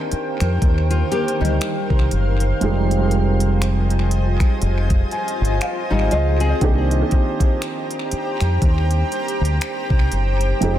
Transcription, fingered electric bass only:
0, 0, Header, 1, 3, 480
1, 0, Start_track
1, 0, Tempo, 1000000
1, 1255, Time_signature, 4, 2, 24, 8
1, 5178, End_track
2, 0, Start_track
2, 0, Title_t, "Fingered electric bass"
2, 0, Program_c, 0, 33
2, 197, Note_on_c, 0, 41, 81
2, 277, Note_off_c, 0, 41, 0
2, 298, Note_on_c, 0, 39, 99
2, 488, Note_off_c, 0, 39, 0
2, 677, Note_on_c, 0, 38, 93
2, 756, Note_off_c, 0, 38, 0
2, 915, Note_on_c, 0, 36, 80
2, 995, Note_off_c, 0, 36, 0
2, 1018, Note_on_c, 0, 30, 83
2, 1208, Note_off_c, 0, 30, 0
2, 1258, Note_on_c, 0, 29, 99
2, 2097, Note_off_c, 0, 29, 0
2, 2218, Note_on_c, 0, 29, 100
2, 2408, Note_off_c, 0, 29, 0
2, 2598, Note_on_c, 0, 31, 90
2, 2677, Note_off_c, 0, 31, 0
2, 2837, Note_on_c, 0, 32, 78
2, 2916, Note_off_c, 0, 32, 0
2, 2938, Note_on_c, 0, 37, 78
2, 3129, Note_off_c, 0, 37, 0
2, 3177, Note_on_c, 0, 36, 111
2, 3368, Note_off_c, 0, 36, 0
2, 4037, Note_on_c, 0, 41, 80
2, 4116, Note_off_c, 0, 41, 0
2, 4138, Note_on_c, 0, 39, 101
2, 4329, Note_off_c, 0, 39, 0
2, 4517, Note_on_c, 0, 38, 92
2, 4597, Note_off_c, 0, 38, 0
2, 4755, Note_on_c, 0, 36, 87
2, 4835, Note_off_c, 0, 36, 0
2, 4858, Note_on_c, 0, 30, 88
2, 5048, Note_off_c, 0, 30, 0
2, 5098, Note_on_c, 0, 29, 103
2, 5178, Note_off_c, 0, 29, 0
2, 5178, End_track
3, 0, Start_track
3, 0, Title_t, "Muted fingered electric bass strokes"
3, 58, Note_on_c, 9, 29, 44
3, 106, Note_off_c, 9, 29, 0
3, 3898, Note_on_c, 9, 29, 46
3, 3946, Note_off_c, 9, 29, 0
3, 5178, End_track
0, 0, End_of_file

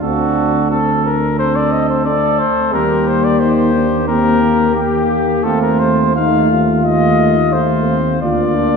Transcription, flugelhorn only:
0, 0, Header, 1, 2, 480
1, 0, Start_track
1, 0, Tempo, 677966
1, 15, Time_signature, 4, 2, 24, 8
1, 3855, Tempo, 692042
1, 6159, End_track
2, 0, Start_track
2, 0, Title_t, "Flugelhorn"
2, 0, Program_c, 0, 56
2, 14, Note_on_c, 0, 69, 47
2, 489, Note_off_c, 0, 69, 0
2, 501, Note_on_c, 0, 69, 46
2, 808, Note_off_c, 0, 69, 0
2, 979, Note_on_c, 0, 69, 53
2, 1428, Note_off_c, 0, 69, 0
2, 1458, Note_on_c, 0, 69, 51
2, 1935, Note_on_c, 0, 67, 51
2, 1946, Note_off_c, 0, 69, 0
2, 2891, Note_off_c, 0, 67, 0
2, 2895, Note_on_c, 0, 67, 52
2, 3362, Note_off_c, 0, 67, 0
2, 3374, Note_on_c, 0, 67, 48
2, 3852, Note_on_c, 0, 65, 50
2, 3862, Note_off_c, 0, 67, 0
2, 4344, Note_off_c, 0, 65, 0
2, 4348, Note_on_c, 0, 65, 52
2, 4816, Note_off_c, 0, 65, 0
2, 4828, Note_on_c, 0, 65, 49
2, 5291, Note_off_c, 0, 65, 0
2, 5304, Note_on_c, 0, 65, 46
2, 5606, Note_off_c, 0, 65, 0
2, 5778, Note_on_c, 0, 65, 50
2, 6159, Note_off_c, 0, 65, 0
2, 6159, End_track
0, 0, End_of_file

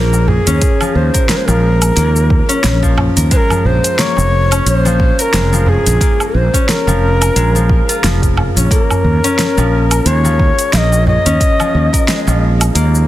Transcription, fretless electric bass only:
0, 0, Header, 1, 2, 480
1, 0, Start_track
1, 0, Tempo, 674157
1, 439, Time_signature, 4, 2, 24, 8
1, 9309, End_track
2, 0, Start_track
2, 0, Title_t, "Fretless electric bass"
2, 0, Program_c, 0, 35
2, 0, Note_on_c, 0, 34, 89
2, 272, Note_off_c, 0, 34, 0
2, 335, Note_on_c, 0, 39, 95
2, 409, Note_off_c, 0, 39, 0
2, 678, Note_on_c, 0, 39, 99
2, 775, Note_off_c, 0, 39, 0
2, 1055, Note_on_c, 0, 34, 97
2, 1351, Note_off_c, 0, 34, 0
2, 1401, Note_on_c, 0, 39, 100
2, 1712, Note_off_c, 0, 39, 0
2, 1881, Note_on_c, 0, 34, 89
2, 2192, Note_off_c, 0, 34, 0
2, 2256, Note_on_c, 0, 39, 98
2, 2329, Note_off_c, 0, 39, 0
2, 2599, Note_on_c, 0, 34, 93
2, 2695, Note_off_c, 0, 34, 0
2, 2976, Note_on_c, 0, 29, 100
2, 3271, Note_off_c, 0, 29, 0
2, 3318, Note_on_c, 0, 34, 99
2, 3631, Note_off_c, 0, 34, 0
2, 3800, Note_on_c, 0, 29, 91
2, 4112, Note_off_c, 0, 29, 0
2, 4176, Note_on_c, 0, 34, 103
2, 4249, Note_off_c, 0, 34, 0
2, 4517, Note_on_c, 0, 34, 96
2, 4615, Note_off_c, 0, 34, 0
2, 4893, Note_on_c, 0, 29, 98
2, 5189, Note_off_c, 0, 29, 0
2, 5240, Note_on_c, 0, 34, 94
2, 5552, Note_off_c, 0, 34, 0
2, 5722, Note_on_c, 0, 29, 84
2, 6033, Note_off_c, 0, 29, 0
2, 6097, Note_on_c, 0, 34, 96
2, 6169, Note_off_c, 0, 34, 0
2, 6438, Note_on_c, 0, 39, 89
2, 6535, Note_off_c, 0, 39, 0
2, 6818, Note_on_c, 0, 34, 99
2, 7112, Note_off_c, 0, 34, 0
2, 7160, Note_on_c, 0, 39, 98
2, 7472, Note_off_c, 0, 39, 0
2, 7642, Note_on_c, 0, 34, 91
2, 7953, Note_off_c, 0, 34, 0
2, 8018, Note_on_c, 0, 39, 93
2, 8090, Note_off_c, 0, 39, 0
2, 8363, Note_on_c, 0, 39, 100
2, 8458, Note_off_c, 0, 39, 0
2, 8740, Note_on_c, 0, 34, 99
2, 9033, Note_off_c, 0, 34, 0
2, 9079, Note_on_c, 0, 39, 97
2, 9309, Note_off_c, 0, 39, 0
2, 9309, End_track
0, 0, End_of_file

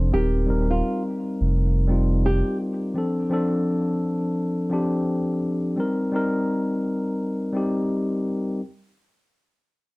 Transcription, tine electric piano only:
0, 0, Header, 1, 2, 480
1, 0, Start_track
1, 0, Tempo, 705882
1, 86, Time_signature, 4, 2, 24, 8
1, 6776, End_track
2, 0, Start_track
2, 0, Title_t, "Tine electric piano"
2, 0, Program_c, 0, 4
2, 0, Control_c, 0, 64, 127
2, 0, Note_on_c, 0, 53, 79
2, 0, Note_on_c, 0, 60, 80
2, 0, Note_on_c, 0, 62, 79
2, 0, Note_on_c, 0, 72, 95
2, 78, Note_on_c, 0, 55, 66
2, 86, Note_off_c, 0, 60, 0
2, 86, Note_on_c, 0, 60, 69
2, 94, Note_on_c, 0, 63, 63
2, 96, Control_c, 0, 64, 0
2, 99, Note_off_c, 0, 72, 0
2, 100, Note_off_c, 0, 53, 0
2, 102, Note_off_c, 0, 62, 0
2, 103, Note_on_c, 0, 70, 82
2, 222, Control_c, 0, 64, 127
2, 248, Note_off_c, 0, 55, 0
2, 252, Note_off_c, 0, 60, 0
2, 256, Note_off_c, 0, 63, 0
2, 261, Note_off_c, 0, 70, 0
2, 313, Note_on_c, 0, 55, 81
2, 321, Note_on_c, 0, 60, 65
2, 330, Note_on_c, 0, 63, 63
2, 340, Note_on_c, 0, 70, 81
2, 921, Note_off_c, 0, 55, 0
2, 925, Note_off_c, 0, 60, 0
2, 930, Note_off_c, 0, 63, 0
2, 935, Note_off_c, 0, 70, 0
2, 1273, Note_on_c, 0, 55, 96
2, 1282, Note_on_c, 0, 60, 79
2, 1291, Note_on_c, 0, 63, 72
2, 1300, Note_on_c, 0, 65, 83
2, 1724, Note_off_c, 0, 55, 0
2, 1729, Note_off_c, 0, 60, 0
2, 1733, Note_off_c, 0, 63, 0
2, 1738, Note_off_c, 0, 65, 0
2, 2000, Note_on_c, 0, 53, 81
2, 2008, Note_on_c, 0, 60, 74
2, 2015, Control_c, 0, 64, 0
2, 2017, Note_on_c, 0, 62, 75
2, 2025, Note_on_c, 0, 69, 94
2, 2119, Control_c, 0, 64, 127
2, 2169, Note_off_c, 0, 53, 0
2, 2174, Note_off_c, 0, 60, 0
2, 2178, Note_off_c, 0, 62, 0
2, 2182, Note_off_c, 0, 69, 0
2, 2240, Note_on_c, 0, 53, 103
2, 2249, Note_on_c, 0, 60, 82
2, 2257, Note_on_c, 0, 62, 86
2, 2266, Note_on_c, 0, 69, 105
2, 2845, Note_off_c, 0, 53, 0
2, 2849, Note_off_c, 0, 60, 0
2, 2853, Note_off_c, 0, 62, 0
2, 2858, Note_off_c, 0, 69, 0
2, 3196, Note_on_c, 0, 53, 90
2, 3205, Note_on_c, 0, 60, 77
2, 3213, Note_on_c, 0, 62, 90
2, 3221, Note_on_c, 0, 67, 96
2, 3646, Note_off_c, 0, 53, 0
2, 3650, Note_off_c, 0, 60, 0
2, 3654, Note_off_c, 0, 62, 0
2, 3658, Note_off_c, 0, 67, 0
2, 3918, Note_on_c, 0, 55, 87
2, 3926, Note_on_c, 0, 60, 76
2, 3935, Control_c, 0, 64, 0
2, 3936, Note_on_c, 0, 63, 72
2, 3944, Note_on_c, 0, 70, 96
2, 4040, Control_c, 0, 64, 127
2, 4088, Note_off_c, 0, 55, 0
2, 4093, Note_off_c, 0, 60, 0
2, 4097, Note_off_c, 0, 63, 0
2, 4101, Note_off_c, 0, 70, 0
2, 4161, Note_on_c, 0, 55, 91
2, 4170, Note_on_c, 0, 60, 79
2, 4180, Note_on_c, 0, 63, 82
2, 4188, Note_on_c, 0, 70, 102
2, 4765, Note_off_c, 0, 55, 0
2, 4770, Note_off_c, 0, 60, 0
2, 4775, Note_off_c, 0, 63, 0
2, 4779, Note_off_c, 0, 70, 0
2, 5119, Note_on_c, 0, 55, 90
2, 5127, Note_on_c, 0, 60, 75
2, 5137, Note_on_c, 0, 63, 73
2, 5145, Note_on_c, 0, 67, 94
2, 5567, Note_off_c, 0, 55, 0
2, 5571, Note_off_c, 0, 60, 0
2, 5576, Note_off_c, 0, 63, 0
2, 5580, Note_off_c, 0, 67, 0
2, 5855, Control_c, 0, 64, 0
2, 6776, End_track
0, 0, End_of_file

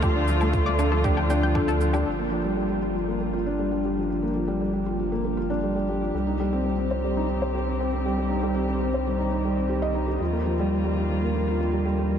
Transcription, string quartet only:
0, 0, Header, 1, 2, 480
1, 0, Start_track
1, 0, Key_signature, -2, "minor"
1, 0, Tempo, 508475
1, 31, Time_signature, 4, 2, 24, 8
1, 11505, End_track
2, 0, Start_track
2, 0, Title_t, "String quartet"
2, 0, Program_c, 0, 48
2, 0, Note_on_c, 0, 50, 77
2, 0, Note_on_c, 0, 53, 71
2, 0, Note_on_c, 0, 57, 68
2, 0, Note_on_c, 0, 65, 86
2, 1916, Note_off_c, 0, 53, 0
2, 1917, Note_off_c, 0, 50, 0
2, 1917, Note_off_c, 0, 57, 0
2, 1917, Note_off_c, 0, 65, 0
2, 1942, Note_on_c, 0, 50, 61
2, 1943, Note_on_c, 0, 58, 51
2, 1945, Note_on_c, 0, 55, 56
2, 1945, Note_on_c, 0, 65, 65
2, 3849, Note_off_c, 0, 65, 0
2, 3868, Note_on_c, 0, 67, 64
2, 5749, Note_off_c, 0, 50, 0
2, 5749, Note_off_c, 0, 58, 0
2, 5750, Note_off_c, 0, 55, 0
2, 5786, Note_on_c, 0, 51, 62
2, 5788, Note_on_c, 0, 55, 55
2, 5790, Note_on_c, 0, 60, 60
2, 9592, Note_off_c, 0, 67, 0
2, 9593, Note_off_c, 0, 60, 0
2, 9630, Note_on_c, 0, 58, 57
2, 9636, Note_on_c, 0, 65, 68
2, 11505, Note_off_c, 0, 51, 0
2, 11505, Note_off_c, 0, 55, 0
2, 11505, Note_off_c, 0, 58, 0
2, 11505, Note_off_c, 0, 65, 0
2, 11505, End_track
0, 0, End_of_file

